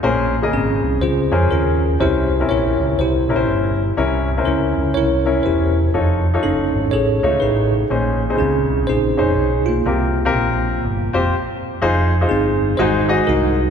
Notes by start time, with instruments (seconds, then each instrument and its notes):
0.03 fingered electric bass A#1, grand piano A#2 C#4 G#4 A#4 C5
0.42 grand piano C#3 G#4 A#4 D#5
0.53 fingered electric bass G#1, tine electric piano C4 C#4 G#4
0.83 fingered electric bass C2
1.01 fingered electric bass C#2, tine electric piano F4 G#4 C5
1.31 fingered electric bass F2, grand piano C#4 G#4 A#4 C5
1.51 fingered electric bass D#2, tine electric piano C#4 F4 A#4
2.00 fingered electric bass C2, grand piano C3 C#4 E4 A#4 C5, tine electric piano E4 G4 C5
2.40 grand piano C4 C#4 E4 A#4
2.49 fingered electric bass A#1, tine electric piano E4 A#4 C#5
2.80 fingered electric bass C#2
2.99 fingered electric bass C2, tine electric piano E4 G4 C5
3.29 fingered electric bass A#1, grand piano C#4 E4 A#4 C5
3.36 grand piano C5
3.48 fingered electric bass G1
3.97 fingered electric bass C2, grand piano C3 C#4 E4 A#4 C#5
4.37 grand piano C#4 E4 A#4 C5
4.45 fingered electric bass C#2, tine electric piano C#4 E4 A#4
4.77 fingered electric bass C#2
4.94 fingered electric bass C2, tine electric piano E4 A#4 C#5
5.25 grand piano C#4 E4 A#4 C#5
5.43 fingered electric bass E1, tine electric piano E4 G4 C5
5.94 fingered electric bass F1, grand piano D#4 F4 A4 C#5
6.34 grand piano D#4 F4 A4 C#5
6.43 fingered electric bass F#1, tine electric piano C#4 D#4 A4
6.74 fingered electric bass G#1
6.91 fingered electric bass A1, tine electric piano G#4 A4 C#5
7.23 fingered electric bass C#2, grand piano A3 D#4 F4 C#5
7.40 fingered electric bass A1, tine electric piano D#4 G#4 B4
7.90 fingered electric bass A#1, grand piano A#2 C#4 D#4 G#4 C5
8.30 grand piano C4 D#4 G#4 C5
8.35 grand piano C#3, tine electric piano G#4
8.40 fingered electric bass C#2, tine electric piano C4 C#4
8.70 fingered electric bass C2
8.87 fingered electric bass A#1, tine electric piano D#4 G#4 C5
9.17 fingered electric bass F1, grand piano C#4 D#4 G#4 C5
9.37 fingered electric bass B1
9.66 tine electric piano A#3 F4
9.86 fingered electric bass C2, grand piano C3 C4 F4 G4 A#4
10.25 grand piano C4 F4 G4 A#4
10.35 fingered electric bass A#1
10.84 fingered electric bass G1
11.13 fingered electric bass F1, grand piano C4 F4 G4 C5
11.82 fingered electric bass F1, grand piano D#4 F4 G#4 C5
12.21 grand piano D#4 F4 G#4 C5
12.29 fingered electric bass G1, tine electric piano C4 D#4 G#4
12.77 fingered electric bass G#1, grand piano G#2 D#4 F#4 G#4 C5, tine electric piano D#4 F#4 C5
13.08 grand piano D#4 F#4 G#4 D#5
13.27 fingered electric bass C2, tine electric piano D#4 F#4 A#4